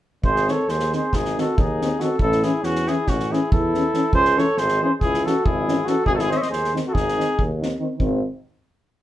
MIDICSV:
0, 0, Header, 1, 7, 480
1, 0, Start_track
1, 0, Tempo, 431034
1, 264, Time_signature, 9, 3, 24, 8
1, 10050, End_track
2, 0, Start_track
2, 0, Title_t, "Cornet"
2, 0, Program_c, 0, 56
2, 276, Note_on_c, 0, 72, 91
2, 542, Note_on_c, 0, 73, 76
2, 559, Note_off_c, 0, 72, 0
2, 767, Note_on_c, 0, 72, 76
2, 784, Note_off_c, 0, 73, 0
2, 1038, Note_off_c, 0, 72, 0
2, 1054, Note_on_c, 0, 72, 66
2, 1279, Note_on_c, 0, 68, 74
2, 1296, Note_off_c, 0, 72, 0
2, 1559, Note_on_c, 0, 69, 67
2, 1576, Note_off_c, 0, 68, 0
2, 1779, Note_on_c, 0, 68, 68
2, 1796, Note_off_c, 0, 69, 0
2, 2254, Note_on_c, 0, 69, 71
2, 2271, Note_off_c, 0, 68, 0
2, 2455, Note_off_c, 0, 69, 0
2, 2464, Note_on_c, 0, 69, 97
2, 2711, Note_on_c, 0, 68, 78
2, 2727, Note_off_c, 0, 69, 0
2, 2950, Note_on_c, 0, 66, 87
2, 2967, Note_off_c, 0, 68, 0
2, 3210, Note_on_c, 0, 68, 77
2, 3227, Note_off_c, 0, 66, 0
2, 3442, Note_on_c, 0, 66, 74
2, 3458, Note_off_c, 0, 68, 0
2, 3695, Note_on_c, 0, 68, 67
2, 3712, Note_off_c, 0, 66, 0
2, 3915, Note_on_c, 0, 69, 77
2, 3931, Note_off_c, 0, 68, 0
2, 4598, Note_off_c, 0, 69, 0
2, 4616, Note_on_c, 0, 72, 107
2, 4876, Note_on_c, 0, 73, 90
2, 4893, Note_off_c, 0, 72, 0
2, 5097, Note_on_c, 0, 72, 88
2, 5114, Note_off_c, 0, 73, 0
2, 5367, Note_off_c, 0, 72, 0
2, 5379, Note_on_c, 0, 72, 74
2, 5476, Note_off_c, 0, 72, 0
2, 5578, Note_on_c, 0, 68, 93
2, 5844, Note_on_c, 0, 69, 77
2, 5860, Note_off_c, 0, 68, 0
2, 6071, Note_on_c, 0, 68, 80
2, 6088, Note_off_c, 0, 69, 0
2, 6551, Note_on_c, 0, 69, 82
2, 6567, Note_off_c, 0, 68, 0
2, 6746, Note_off_c, 0, 69, 0
2, 6753, Note_on_c, 0, 68, 112
2, 6845, Note_on_c, 0, 69, 83
2, 6862, Note_off_c, 0, 68, 0
2, 6911, Note_on_c, 0, 68, 105
2, 6928, Note_off_c, 0, 69, 0
2, 7030, Note_off_c, 0, 68, 0
2, 7037, Note_on_c, 0, 75, 85
2, 7094, Note_on_c, 0, 76, 83
2, 7110, Note_off_c, 0, 75, 0
2, 7135, Note_on_c, 0, 75, 79
2, 7152, Note_off_c, 0, 76, 0
2, 7242, Note_off_c, 0, 75, 0
2, 7249, Note_on_c, 0, 72, 76
2, 7500, Note_off_c, 0, 72, 0
2, 7670, Note_on_c, 0, 69, 72
2, 7717, Note_on_c, 0, 68, 107
2, 7734, Note_off_c, 0, 69, 0
2, 8281, Note_off_c, 0, 68, 0
2, 10050, End_track
3, 0, Start_track
3, 0, Title_t, "Flugelhorn"
3, 0, Program_c, 1, 56
3, 296, Note_on_c, 1, 68, 77
3, 576, Note_on_c, 1, 69, 70
3, 593, Note_off_c, 1, 68, 0
3, 779, Note_on_c, 1, 68, 65
3, 796, Note_off_c, 1, 69, 0
3, 1044, Note_off_c, 1, 68, 0
3, 1061, Note_on_c, 1, 68, 61
3, 1276, Note_on_c, 1, 63, 58
3, 1293, Note_off_c, 1, 68, 0
3, 1552, Note_on_c, 1, 66, 61
3, 1569, Note_off_c, 1, 63, 0
3, 1756, Note_on_c, 1, 63, 74
3, 1773, Note_off_c, 1, 66, 0
3, 2225, Note_on_c, 1, 66, 60
3, 2242, Note_off_c, 1, 63, 0
3, 2432, Note_off_c, 1, 66, 0
3, 2439, Note_on_c, 1, 64, 67
3, 2702, Note_off_c, 1, 64, 0
3, 2702, Note_on_c, 1, 64, 67
3, 2922, Note_on_c, 1, 61, 59
3, 2939, Note_off_c, 1, 64, 0
3, 3199, Note_on_c, 1, 64, 59
3, 3216, Note_off_c, 1, 61, 0
3, 3425, Note_on_c, 1, 61, 66
3, 3442, Note_off_c, 1, 64, 0
3, 3703, Note_on_c, 1, 64, 61
3, 3720, Note_off_c, 1, 61, 0
3, 3927, Note_off_c, 1, 64, 0
3, 3927, Note_on_c, 1, 64, 82
3, 4604, Note_off_c, 1, 64, 0
3, 4615, Note_on_c, 1, 68, 79
3, 4865, Note_on_c, 1, 69, 82
3, 4881, Note_off_c, 1, 68, 0
3, 5108, Note_on_c, 1, 68, 75
3, 5125, Note_off_c, 1, 69, 0
3, 5356, Note_off_c, 1, 68, 0
3, 5362, Note_on_c, 1, 68, 71
3, 5463, Note_off_c, 1, 68, 0
3, 5592, Note_on_c, 1, 64, 70
3, 5865, Note_on_c, 1, 66, 64
3, 5882, Note_off_c, 1, 64, 0
3, 6071, Note_on_c, 1, 64, 75
3, 6088, Note_off_c, 1, 66, 0
3, 6519, Note_on_c, 1, 66, 66
3, 6536, Note_off_c, 1, 64, 0
3, 6737, Note_off_c, 1, 66, 0
3, 6744, Note_on_c, 1, 63, 69
3, 6820, Note_on_c, 1, 66, 66
3, 6837, Note_off_c, 1, 63, 0
3, 6882, Note_on_c, 1, 64, 85
3, 6899, Note_off_c, 1, 66, 0
3, 6999, Note_off_c, 1, 64, 0
3, 7005, Note_on_c, 1, 72, 76
3, 7079, Note_on_c, 1, 73, 74
3, 7096, Note_off_c, 1, 72, 0
3, 7115, Note_on_c, 1, 72, 67
3, 7132, Note_off_c, 1, 73, 0
3, 7229, Note_off_c, 1, 72, 0
3, 7236, Note_on_c, 1, 68, 72
3, 7492, Note_off_c, 1, 68, 0
3, 7655, Note_on_c, 1, 66, 61
3, 7731, Note_on_c, 1, 63, 72
3, 7747, Note_off_c, 1, 66, 0
3, 8288, Note_off_c, 1, 63, 0
3, 10050, End_track
4, 0, Start_track
4, 0, Title_t, "French horn"
4, 0, Program_c, 2, 60
4, 541, Note_on_c, 2, 60, 45
4, 630, Note_off_c, 2, 60, 0
4, 1041, Note_on_c, 2, 60, 49
4, 1129, Note_off_c, 2, 60, 0
4, 1529, Note_on_c, 2, 60, 50
4, 1620, Note_off_c, 2, 60, 0
4, 2019, Note_on_c, 2, 60, 63
4, 2103, Note_off_c, 2, 60, 0
4, 2239, Note_on_c, 2, 60, 58
4, 2322, Note_off_c, 2, 60, 0
4, 2722, Note_on_c, 2, 61, 60
4, 2809, Note_off_c, 2, 61, 0
4, 3202, Note_on_c, 2, 61, 52
4, 3292, Note_off_c, 2, 61, 0
4, 3703, Note_on_c, 2, 61, 62
4, 3791, Note_off_c, 2, 61, 0
4, 4185, Note_on_c, 2, 61, 56
4, 4268, Note_off_c, 2, 61, 0
4, 4395, Note_on_c, 2, 61, 63
4, 4480, Note_off_c, 2, 61, 0
4, 4870, Note_on_c, 2, 61, 68
4, 4959, Note_off_c, 2, 61, 0
4, 5387, Note_on_c, 2, 61, 66
4, 5471, Note_off_c, 2, 61, 0
4, 5876, Note_on_c, 2, 61, 51
4, 5961, Note_off_c, 2, 61, 0
4, 6326, Note_on_c, 2, 61, 64
4, 6412, Note_off_c, 2, 61, 0
4, 6540, Note_on_c, 2, 61, 55
4, 6626, Note_off_c, 2, 61, 0
4, 7026, Note_on_c, 2, 60, 50
4, 7115, Note_off_c, 2, 60, 0
4, 7510, Note_on_c, 2, 60, 53
4, 7600, Note_off_c, 2, 60, 0
4, 7995, Note_on_c, 2, 60, 45
4, 8087, Note_off_c, 2, 60, 0
4, 8481, Note_on_c, 2, 60, 53
4, 8566, Note_off_c, 2, 60, 0
4, 8685, Note_on_c, 2, 60, 49
4, 8772, Note_off_c, 2, 60, 0
4, 8874, Note_on_c, 2, 60, 60
4, 9140, Note_off_c, 2, 60, 0
4, 10050, End_track
5, 0, Start_track
5, 0, Title_t, "Euphonium"
5, 0, Program_c, 3, 58
5, 538, Note_on_c, 3, 51, 46
5, 628, Note_off_c, 3, 51, 0
5, 1042, Note_on_c, 3, 51, 54
5, 1130, Note_off_c, 3, 51, 0
5, 1533, Note_on_c, 3, 51, 62
5, 1623, Note_off_c, 3, 51, 0
5, 2007, Note_on_c, 3, 51, 58
5, 2094, Note_off_c, 3, 51, 0
5, 2226, Note_on_c, 3, 51, 48
5, 2312, Note_off_c, 3, 51, 0
5, 2700, Note_on_c, 3, 52, 57
5, 2792, Note_off_c, 3, 52, 0
5, 3211, Note_on_c, 3, 52, 58
5, 3299, Note_off_c, 3, 52, 0
5, 3682, Note_on_c, 3, 52, 57
5, 3775, Note_off_c, 3, 52, 0
5, 4158, Note_on_c, 3, 52, 60
5, 4247, Note_off_c, 3, 52, 0
5, 4379, Note_on_c, 3, 52, 50
5, 4467, Note_off_c, 3, 52, 0
5, 4862, Note_on_c, 3, 52, 62
5, 4953, Note_off_c, 3, 52, 0
5, 5357, Note_on_c, 3, 52, 58
5, 5447, Note_off_c, 3, 52, 0
5, 5844, Note_on_c, 3, 52, 51
5, 5935, Note_off_c, 3, 52, 0
5, 6319, Note_on_c, 3, 52, 52
5, 6406, Note_off_c, 3, 52, 0
5, 6523, Note_on_c, 3, 52, 47
5, 6612, Note_off_c, 3, 52, 0
5, 7007, Note_on_c, 3, 51, 56
5, 7099, Note_off_c, 3, 51, 0
5, 7501, Note_on_c, 3, 51, 56
5, 7593, Note_off_c, 3, 51, 0
5, 7983, Note_on_c, 3, 51, 51
5, 8077, Note_off_c, 3, 51, 0
5, 8470, Note_on_c, 3, 51, 47
5, 8557, Note_off_c, 3, 51, 0
5, 8679, Note_on_c, 3, 51, 49
5, 8767, Note_off_c, 3, 51, 0
5, 8884, Note_on_c, 3, 51, 57
5, 9145, Note_off_c, 3, 51, 0
5, 10050, End_track
6, 0, Start_track
6, 0, Title_t, "Tuba"
6, 0, Program_c, 4, 58
6, 259, Note_on_c, 4, 32, 96
6, 535, Note_off_c, 4, 32, 0
6, 757, Note_on_c, 4, 39, 80
6, 1032, Note_off_c, 4, 39, 0
6, 1258, Note_on_c, 4, 32, 77
6, 1531, Note_off_c, 4, 32, 0
6, 1756, Note_on_c, 4, 39, 78
6, 2132, Note_off_c, 4, 39, 0
6, 2445, Note_on_c, 4, 33, 93
6, 2716, Note_off_c, 4, 33, 0
6, 2932, Note_on_c, 4, 40, 81
6, 3205, Note_off_c, 4, 40, 0
6, 3432, Note_on_c, 4, 33, 75
6, 3703, Note_off_c, 4, 33, 0
6, 3922, Note_on_c, 4, 40, 79
6, 4296, Note_off_c, 4, 40, 0
6, 4596, Note_on_c, 4, 37, 96
6, 4869, Note_off_c, 4, 37, 0
6, 5096, Note_on_c, 4, 32, 88
6, 5366, Note_off_c, 4, 32, 0
6, 5580, Note_on_c, 4, 37, 69
6, 5853, Note_off_c, 4, 37, 0
6, 6082, Note_on_c, 4, 32, 88
6, 6454, Note_off_c, 4, 32, 0
6, 6763, Note_on_c, 4, 32, 107
6, 7032, Note_off_c, 4, 32, 0
6, 7241, Note_on_c, 4, 39, 66
6, 7513, Note_off_c, 4, 39, 0
6, 7737, Note_on_c, 4, 32, 84
6, 8007, Note_off_c, 4, 32, 0
6, 8239, Note_on_c, 4, 39, 82
6, 8609, Note_off_c, 4, 39, 0
6, 8915, Note_on_c, 4, 32, 94
6, 9162, Note_off_c, 4, 32, 0
6, 10050, End_track
7, 0, Start_track
7, 0, Title_t, "Drums"
7, 262, Note_on_c, 9, 36, 66
7, 373, Note_off_c, 9, 36, 0
7, 404, Note_on_c, 9, 38, 22
7, 516, Note_off_c, 9, 38, 0
7, 539, Note_on_c, 9, 38, 24
7, 650, Note_off_c, 9, 38, 0
7, 764, Note_on_c, 9, 38, 27
7, 875, Note_off_c, 9, 38, 0
7, 887, Note_on_c, 9, 38, 27
7, 998, Note_off_c, 9, 38, 0
7, 1032, Note_on_c, 9, 38, 26
7, 1144, Note_off_c, 9, 38, 0
7, 1257, Note_on_c, 9, 36, 61
7, 1259, Note_on_c, 9, 38, 30
7, 1369, Note_off_c, 9, 36, 0
7, 1370, Note_off_c, 9, 38, 0
7, 1394, Note_on_c, 9, 38, 26
7, 1506, Note_off_c, 9, 38, 0
7, 1540, Note_on_c, 9, 38, 28
7, 1651, Note_off_c, 9, 38, 0
7, 1759, Note_on_c, 9, 36, 85
7, 1871, Note_off_c, 9, 36, 0
7, 2022, Note_on_c, 9, 38, 29
7, 2133, Note_off_c, 9, 38, 0
7, 2229, Note_on_c, 9, 38, 24
7, 2340, Note_off_c, 9, 38, 0
7, 2442, Note_on_c, 9, 36, 68
7, 2554, Note_off_c, 9, 36, 0
7, 2583, Note_on_c, 9, 38, 23
7, 2694, Note_off_c, 9, 38, 0
7, 2703, Note_on_c, 9, 38, 25
7, 2814, Note_off_c, 9, 38, 0
7, 2933, Note_on_c, 9, 38, 26
7, 3044, Note_off_c, 9, 38, 0
7, 3068, Note_on_c, 9, 38, 30
7, 3180, Note_off_c, 9, 38, 0
7, 3199, Note_on_c, 9, 38, 28
7, 3310, Note_off_c, 9, 38, 0
7, 3421, Note_on_c, 9, 38, 31
7, 3426, Note_on_c, 9, 36, 61
7, 3532, Note_off_c, 9, 38, 0
7, 3537, Note_off_c, 9, 36, 0
7, 3560, Note_on_c, 9, 38, 22
7, 3671, Note_off_c, 9, 38, 0
7, 3714, Note_on_c, 9, 38, 24
7, 3825, Note_off_c, 9, 38, 0
7, 3920, Note_on_c, 9, 36, 86
7, 4031, Note_off_c, 9, 36, 0
7, 4168, Note_on_c, 9, 38, 23
7, 4280, Note_off_c, 9, 38, 0
7, 4385, Note_on_c, 9, 38, 26
7, 4497, Note_off_c, 9, 38, 0
7, 4598, Note_on_c, 9, 36, 68
7, 4709, Note_off_c, 9, 36, 0
7, 4734, Note_on_c, 9, 38, 25
7, 4846, Note_off_c, 9, 38, 0
7, 4883, Note_on_c, 9, 38, 23
7, 4994, Note_off_c, 9, 38, 0
7, 5093, Note_on_c, 9, 38, 30
7, 5205, Note_off_c, 9, 38, 0
7, 5219, Note_on_c, 9, 38, 27
7, 5330, Note_off_c, 9, 38, 0
7, 5582, Note_on_c, 9, 36, 66
7, 5583, Note_on_c, 9, 38, 28
7, 5694, Note_off_c, 9, 36, 0
7, 5694, Note_off_c, 9, 38, 0
7, 5727, Note_on_c, 9, 38, 26
7, 5838, Note_off_c, 9, 38, 0
7, 5866, Note_on_c, 9, 38, 24
7, 5978, Note_off_c, 9, 38, 0
7, 6076, Note_on_c, 9, 36, 72
7, 6187, Note_off_c, 9, 36, 0
7, 6329, Note_on_c, 9, 38, 26
7, 6441, Note_off_c, 9, 38, 0
7, 6538, Note_on_c, 9, 38, 25
7, 6650, Note_off_c, 9, 38, 0
7, 6750, Note_on_c, 9, 36, 54
7, 6861, Note_off_c, 9, 36, 0
7, 6894, Note_on_c, 9, 38, 21
7, 7005, Note_off_c, 9, 38, 0
7, 7031, Note_on_c, 9, 38, 18
7, 7143, Note_off_c, 9, 38, 0
7, 7154, Note_on_c, 9, 38, 28
7, 7265, Note_off_c, 9, 38, 0
7, 7270, Note_on_c, 9, 38, 26
7, 7381, Note_off_c, 9, 38, 0
7, 7399, Note_on_c, 9, 38, 23
7, 7510, Note_off_c, 9, 38, 0
7, 7532, Note_on_c, 9, 38, 26
7, 7644, Note_off_c, 9, 38, 0
7, 7738, Note_on_c, 9, 36, 61
7, 7757, Note_on_c, 9, 38, 28
7, 7849, Note_off_c, 9, 36, 0
7, 7868, Note_off_c, 9, 38, 0
7, 7890, Note_on_c, 9, 38, 21
7, 8002, Note_off_c, 9, 38, 0
7, 8020, Note_on_c, 9, 38, 24
7, 8132, Note_off_c, 9, 38, 0
7, 8226, Note_on_c, 9, 36, 65
7, 8338, Note_off_c, 9, 36, 0
7, 8493, Note_on_c, 9, 38, 27
7, 8605, Note_off_c, 9, 38, 0
7, 8908, Note_on_c, 9, 36, 65
7, 9020, Note_off_c, 9, 36, 0
7, 10050, End_track
0, 0, End_of_file